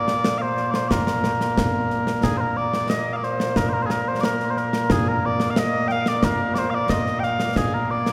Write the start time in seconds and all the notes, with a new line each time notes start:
Already playing: A#2 A#3 D5
0.08 snare
0.24 snare
0.38 C5 F5
0.57 snare
0.71 D5, snare
0.75 C5
0.88 A#4 D5, concert bass drum, snare
1.07 snare
1.24 snare
1.41 snare
1.58 concert bass drum, snare
1.91 snare
2.07 snare
2.23 G#4, concert bass drum, snare
2.37 A#4 C5
2.57 D5
2.74 snare
2.90 D#5, snare
3.13 D5 F5
3.23 C5, snare
3.40 snare
3.56 A#4, concert bass drum, snare
3.70 A#4 C5
3.82 G#4 C5
3.90 A#4, snare
4.08 C5
4.21 D5, snare
4.25 A#4
4.40 snare
4.51 C5
4.57 A#4, snare
4.73 snare
4.90 G#4, concert bass drum, snare
5.08 A#4
5.26 D5
5.40 snare
5.50 F5
5.56 D#5, snare
5.88 F5 G5, snare
6.06 D5, snare
6.23 A#4, concert bass drum, snare
6.55 C5 D5, snare
6.70 F5
6.75 D5
6.89 D#5, concert bass drum, snare
7.07 snare
7.20 G5, snare
7.24 F5
7.40 snare
7.56 G#4, concert bass drum, snare
7.74 A#4
7.91 D5
8.06 snare